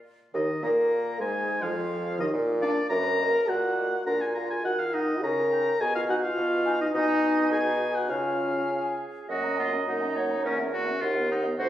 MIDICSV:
0, 0, Header, 1, 6, 480
1, 0, Start_track
1, 0, Key_signature, -6, "minor"
1, 0, Tempo, 574163
1, 45, Time_signature, 2, 2, 24, 8
1, 5810, Key_signature, 6, "major"
1, 6284, Tempo, 591716
1, 7724, Tempo, 574163
1, 9730, End_track
2, 0, Start_track
2, 0, Title_t, "Flute"
2, 0, Program_c, 0, 73
2, 291, Note_on_c, 0, 63, 59
2, 513, Note_off_c, 0, 63, 0
2, 527, Note_on_c, 0, 70, 74
2, 994, Note_off_c, 0, 70, 0
2, 999, Note_on_c, 0, 68, 70
2, 1351, Note_off_c, 0, 68, 0
2, 1356, Note_on_c, 0, 65, 75
2, 1830, Note_on_c, 0, 63, 61
2, 1843, Note_off_c, 0, 65, 0
2, 1951, Note_off_c, 0, 63, 0
2, 2191, Note_on_c, 0, 77, 79
2, 2241, Note_off_c, 0, 77, 0
2, 2669, Note_on_c, 0, 75, 72
2, 2720, Note_off_c, 0, 75, 0
2, 3156, Note_on_c, 0, 75, 57
2, 3206, Note_off_c, 0, 75, 0
2, 3648, Note_on_c, 0, 77, 47
2, 3698, Note_off_c, 0, 77, 0
2, 4133, Note_on_c, 0, 78, 56
2, 4183, Note_off_c, 0, 78, 0
2, 4608, Note_on_c, 0, 79, 63
2, 4659, Note_off_c, 0, 79, 0
2, 5085, Note_on_c, 0, 80, 65
2, 5135, Note_off_c, 0, 80, 0
2, 5564, Note_on_c, 0, 80, 86
2, 5614, Note_off_c, 0, 80, 0
2, 5801, Note_on_c, 0, 80, 81
2, 6248, Note_off_c, 0, 80, 0
2, 6280, Note_on_c, 0, 80, 78
2, 6742, Note_off_c, 0, 80, 0
2, 6747, Note_on_c, 0, 80, 62
2, 7461, Note_off_c, 0, 80, 0
2, 7725, Note_on_c, 0, 78, 42
2, 7842, Note_on_c, 0, 82, 38
2, 7854, Note_off_c, 0, 78, 0
2, 7962, Note_on_c, 0, 78, 39
2, 7975, Note_off_c, 0, 82, 0
2, 8087, Note_on_c, 0, 82, 38
2, 8100, Note_off_c, 0, 78, 0
2, 8203, Note_off_c, 0, 82, 0
2, 8208, Note_on_c, 0, 78, 41
2, 8327, Note_on_c, 0, 82, 43
2, 8340, Note_off_c, 0, 78, 0
2, 8451, Note_on_c, 0, 78, 46
2, 8463, Note_off_c, 0, 82, 0
2, 8570, Note_on_c, 0, 82, 39
2, 8583, Note_off_c, 0, 78, 0
2, 8680, Note_off_c, 0, 82, 0
2, 8685, Note_on_c, 0, 78, 50
2, 8804, Note_on_c, 0, 76, 45
2, 8817, Note_off_c, 0, 78, 0
2, 8918, Note_on_c, 0, 78, 45
2, 8931, Note_off_c, 0, 76, 0
2, 9042, Note_on_c, 0, 76, 42
2, 9054, Note_off_c, 0, 78, 0
2, 9159, Note_off_c, 0, 76, 0
2, 9164, Note_on_c, 0, 78, 54
2, 9278, Note_on_c, 0, 75, 52
2, 9291, Note_off_c, 0, 78, 0
2, 9396, Note_on_c, 0, 78, 52
2, 9409, Note_off_c, 0, 75, 0
2, 9516, Note_on_c, 0, 75, 48
2, 9528, Note_off_c, 0, 78, 0
2, 9629, Note_off_c, 0, 75, 0
2, 9634, Note_on_c, 0, 78, 57
2, 9730, Note_off_c, 0, 78, 0
2, 9730, End_track
3, 0, Start_track
3, 0, Title_t, "Oboe"
3, 0, Program_c, 1, 68
3, 295, Note_on_c, 1, 75, 57
3, 533, Note_on_c, 1, 82, 66
3, 545, Note_off_c, 1, 75, 0
3, 1003, Note_off_c, 1, 82, 0
3, 1008, Note_on_c, 1, 80, 71
3, 1358, Note_on_c, 1, 77, 66
3, 1371, Note_off_c, 1, 80, 0
3, 1834, Note_off_c, 1, 77, 0
3, 1840, Note_on_c, 1, 75, 62
3, 1892, Note_off_c, 1, 75, 0
3, 2190, Note_on_c, 1, 74, 86
3, 2412, Note_off_c, 1, 74, 0
3, 2421, Note_on_c, 1, 82, 98
3, 2915, Note_on_c, 1, 78, 82
3, 2927, Note_off_c, 1, 82, 0
3, 3392, Note_off_c, 1, 78, 0
3, 3397, Note_on_c, 1, 82, 76
3, 3518, Note_on_c, 1, 80, 64
3, 3531, Note_off_c, 1, 82, 0
3, 3635, Note_off_c, 1, 80, 0
3, 3640, Note_on_c, 1, 82, 66
3, 3760, Note_off_c, 1, 82, 0
3, 3765, Note_on_c, 1, 80, 66
3, 3880, Note_off_c, 1, 80, 0
3, 3885, Note_on_c, 1, 78, 80
3, 4005, Note_on_c, 1, 77, 71
3, 4017, Note_off_c, 1, 78, 0
3, 4130, Note_on_c, 1, 75, 64
3, 4142, Note_off_c, 1, 77, 0
3, 4371, Note_off_c, 1, 75, 0
3, 4376, Note_on_c, 1, 82, 78
3, 4855, Note_on_c, 1, 80, 89
3, 4868, Note_off_c, 1, 82, 0
3, 4973, Note_off_c, 1, 80, 0
3, 4978, Note_on_c, 1, 77, 81
3, 5031, Note_off_c, 1, 77, 0
3, 5094, Note_on_c, 1, 78, 86
3, 5148, Note_off_c, 1, 78, 0
3, 5211, Note_on_c, 1, 77, 78
3, 5680, Note_off_c, 1, 77, 0
3, 5695, Note_on_c, 1, 75, 73
3, 5748, Note_off_c, 1, 75, 0
3, 5809, Note_on_c, 1, 75, 102
3, 6276, Note_off_c, 1, 75, 0
3, 6288, Note_on_c, 1, 80, 91
3, 6638, Note_on_c, 1, 78, 78
3, 6650, Note_off_c, 1, 80, 0
3, 6758, Note_on_c, 1, 77, 66
3, 6770, Note_off_c, 1, 78, 0
3, 7481, Note_off_c, 1, 77, 0
3, 7731, Note_on_c, 1, 66, 49
3, 7957, Note_off_c, 1, 66, 0
3, 7976, Note_on_c, 1, 65, 48
3, 8083, Note_off_c, 1, 65, 0
3, 8211, Note_on_c, 1, 63, 44
3, 8682, Note_off_c, 1, 63, 0
3, 8694, Note_on_c, 1, 61, 52
3, 8801, Note_off_c, 1, 61, 0
3, 8929, Note_on_c, 1, 66, 58
3, 9166, Note_on_c, 1, 65, 52
3, 9179, Note_off_c, 1, 66, 0
3, 9406, Note_off_c, 1, 65, 0
3, 9415, Note_on_c, 1, 63, 53
3, 9521, Note_off_c, 1, 63, 0
3, 9645, Note_on_c, 1, 66, 59
3, 9730, Note_off_c, 1, 66, 0
3, 9730, End_track
4, 0, Start_track
4, 0, Title_t, "French horn"
4, 0, Program_c, 2, 60
4, 290, Note_on_c, 2, 63, 64
4, 398, Note_off_c, 2, 63, 0
4, 535, Note_on_c, 2, 70, 89
4, 1007, Note_on_c, 2, 68, 82
4, 1020, Note_off_c, 2, 70, 0
4, 1360, Note_off_c, 2, 68, 0
4, 1365, Note_on_c, 2, 65, 85
4, 1848, Note_on_c, 2, 63, 74
4, 1860, Note_off_c, 2, 65, 0
4, 1960, Note_off_c, 2, 63, 0
4, 2195, Note_on_c, 2, 62, 102
4, 2302, Note_off_c, 2, 62, 0
4, 2436, Note_on_c, 2, 70, 102
4, 2501, Note_on_c, 2, 71, 102
4, 2514, Note_off_c, 2, 70, 0
4, 2564, Note_on_c, 2, 70, 92
4, 2577, Note_off_c, 2, 71, 0
4, 2630, Note_on_c, 2, 71, 90
4, 2643, Note_off_c, 2, 70, 0
4, 2697, Note_on_c, 2, 70, 116
4, 2710, Note_off_c, 2, 71, 0
4, 2911, Note_on_c, 2, 66, 101
4, 2924, Note_off_c, 2, 70, 0
4, 3395, Note_off_c, 2, 66, 0
4, 3401, Note_on_c, 2, 70, 98
4, 3456, Note_off_c, 2, 70, 0
4, 3535, Note_on_c, 2, 68, 71
4, 3650, Note_on_c, 2, 70, 84
4, 3663, Note_off_c, 2, 68, 0
4, 3770, Note_off_c, 2, 70, 0
4, 3776, Note_on_c, 2, 68, 67
4, 3829, Note_off_c, 2, 68, 0
4, 3885, Note_on_c, 2, 66, 82
4, 3940, Note_off_c, 2, 66, 0
4, 4013, Note_on_c, 2, 65, 76
4, 4126, Note_on_c, 2, 63, 88
4, 4138, Note_off_c, 2, 65, 0
4, 4372, Note_on_c, 2, 70, 105
4, 4385, Note_off_c, 2, 63, 0
4, 4856, Note_on_c, 2, 68, 111
4, 4868, Note_off_c, 2, 70, 0
4, 4975, Note_off_c, 2, 68, 0
4, 4984, Note_on_c, 2, 65, 87
4, 5036, Note_off_c, 2, 65, 0
4, 5090, Note_on_c, 2, 66, 99
4, 5145, Note_off_c, 2, 66, 0
4, 5211, Note_on_c, 2, 65, 109
4, 5697, Note_on_c, 2, 63, 95
4, 5709, Note_off_c, 2, 65, 0
4, 5801, Note_off_c, 2, 63, 0
4, 5806, Note_on_c, 2, 63, 126
4, 6275, Note_off_c, 2, 63, 0
4, 6282, Note_on_c, 2, 68, 115
4, 6629, Note_off_c, 2, 68, 0
4, 6645, Note_on_c, 2, 66, 81
4, 6749, Note_off_c, 2, 66, 0
4, 6754, Note_on_c, 2, 65, 85
4, 7464, Note_off_c, 2, 65, 0
4, 7727, Note_on_c, 2, 58, 41
4, 7854, Note_on_c, 2, 61, 40
4, 7867, Note_off_c, 2, 58, 0
4, 7976, Note_on_c, 2, 58, 39
4, 7988, Note_off_c, 2, 61, 0
4, 8092, Note_on_c, 2, 61, 40
4, 8105, Note_off_c, 2, 58, 0
4, 8205, Note_off_c, 2, 61, 0
4, 8210, Note_on_c, 2, 58, 43
4, 8334, Note_on_c, 2, 61, 40
4, 8346, Note_off_c, 2, 58, 0
4, 8454, Note_on_c, 2, 58, 44
4, 8467, Note_off_c, 2, 61, 0
4, 8576, Note_on_c, 2, 61, 42
4, 8588, Note_off_c, 2, 58, 0
4, 8694, Note_off_c, 2, 61, 0
4, 8699, Note_on_c, 2, 58, 50
4, 8818, Note_on_c, 2, 61, 46
4, 8831, Note_off_c, 2, 58, 0
4, 8934, Note_on_c, 2, 58, 43
4, 8947, Note_off_c, 2, 61, 0
4, 9055, Note_on_c, 2, 61, 44
4, 9067, Note_off_c, 2, 58, 0
4, 9168, Note_off_c, 2, 61, 0
4, 9173, Note_on_c, 2, 63, 53
4, 9292, Note_on_c, 2, 59, 45
4, 9304, Note_off_c, 2, 63, 0
4, 9409, Note_on_c, 2, 63, 54
4, 9422, Note_off_c, 2, 59, 0
4, 9527, Note_on_c, 2, 59, 49
4, 9539, Note_off_c, 2, 63, 0
4, 9639, Note_off_c, 2, 59, 0
4, 9644, Note_on_c, 2, 62, 54
4, 9730, Note_off_c, 2, 62, 0
4, 9730, End_track
5, 0, Start_track
5, 0, Title_t, "Clarinet"
5, 0, Program_c, 3, 71
5, 283, Note_on_c, 3, 51, 64
5, 509, Note_off_c, 3, 51, 0
5, 522, Note_on_c, 3, 58, 84
5, 994, Note_off_c, 3, 58, 0
5, 998, Note_on_c, 3, 56, 89
5, 1351, Note_off_c, 3, 56, 0
5, 1356, Note_on_c, 3, 53, 82
5, 1823, Note_off_c, 3, 53, 0
5, 1829, Note_on_c, 3, 51, 70
5, 1884, Note_off_c, 3, 51, 0
5, 2185, Note_on_c, 3, 58, 75
5, 2273, Note_off_c, 3, 58, 0
5, 2669, Note_on_c, 3, 58, 65
5, 2757, Note_off_c, 3, 58, 0
5, 3154, Note_on_c, 3, 58, 57
5, 3243, Note_off_c, 3, 58, 0
5, 3395, Note_on_c, 3, 62, 64
5, 3507, Note_off_c, 3, 62, 0
5, 3636, Note_on_c, 3, 65, 66
5, 3879, Note_off_c, 3, 65, 0
5, 4125, Note_on_c, 3, 63, 55
5, 4214, Note_off_c, 3, 63, 0
5, 4615, Note_on_c, 3, 63, 61
5, 4702, Note_off_c, 3, 63, 0
5, 5087, Note_on_c, 3, 63, 74
5, 5175, Note_off_c, 3, 63, 0
5, 5565, Note_on_c, 3, 63, 74
5, 5652, Note_off_c, 3, 63, 0
5, 5806, Note_on_c, 3, 63, 101
5, 6251, Note_off_c, 3, 63, 0
5, 6277, Note_on_c, 3, 63, 82
5, 6743, Note_off_c, 3, 63, 0
5, 6754, Note_on_c, 3, 61, 68
5, 7178, Note_off_c, 3, 61, 0
5, 7231, Note_on_c, 3, 68, 60
5, 7691, Note_off_c, 3, 68, 0
5, 7721, Note_on_c, 3, 75, 89
5, 8448, Note_on_c, 3, 73, 65
5, 8460, Note_off_c, 3, 75, 0
5, 8686, Note_on_c, 3, 70, 76
5, 8698, Note_off_c, 3, 73, 0
5, 9166, Note_off_c, 3, 70, 0
5, 9644, Note_on_c, 3, 72, 101
5, 9730, Note_off_c, 3, 72, 0
5, 9730, End_track
6, 0, Start_track
6, 0, Title_t, "Bassoon"
6, 0, Program_c, 4, 70
6, 283, Note_on_c, 4, 39, 62
6, 393, Note_off_c, 4, 39, 0
6, 527, Note_on_c, 4, 46, 73
6, 997, Note_off_c, 4, 46, 0
6, 1000, Note_on_c, 4, 44, 65
6, 1352, Note_off_c, 4, 44, 0
6, 1360, Note_on_c, 4, 41, 78
6, 1836, Note_on_c, 4, 39, 68
6, 1849, Note_off_c, 4, 41, 0
6, 1949, Note_off_c, 4, 39, 0
6, 1954, Note_on_c, 4, 46, 86
6, 2350, Note_off_c, 4, 46, 0
6, 2425, Note_on_c, 4, 42, 91
6, 2830, Note_off_c, 4, 42, 0
6, 2911, Note_on_c, 4, 46, 79
6, 3321, Note_off_c, 4, 46, 0
6, 3398, Note_on_c, 4, 46, 69
6, 3806, Note_off_c, 4, 46, 0
6, 3882, Note_on_c, 4, 51, 68
6, 4290, Note_off_c, 4, 51, 0
6, 4368, Note_on_c, 4, 49, 73
6, 4773, Note_off_c, 4, 49, 0
6, 4851, Note_on_c, 4, 47, 78
6, 5251, Note_off_c, 4, 47, 0
6, 5324, Note_on_c, 4, 47, 87
6, 5726, Note_off_c, 4, 47, 0
6, 5806, Note_on_c, 4, 47, 101
6, 6750, Note_on_c, 4, 49, 71
6, 6762, Note_off_c, 4, 47, 0
6, 7477, Note_off_c, 4, 49, 0
6, 7724, Note_on_c, 4, 42, 54
6, 8154, Note_off_c, 4, 42, 0
6, 8212, Note_on_c, 4, 42, 52
6, 8635, Note_off_c, 4, 42, 0
6, 8692, Note_on_c, 4, 40, 55
6, 9113, Note_off_c, 4, 40, 0
6, 9169, Note_on_c, 4, 39, 62
6, 9590, Note_off_c, 4, 39, 0
6, 9645, Note_on_c, 4, 38, 68
6, 9730, Note_off_c, 4, 38, 0
6, 9730, End_track
0, 0, End_of_file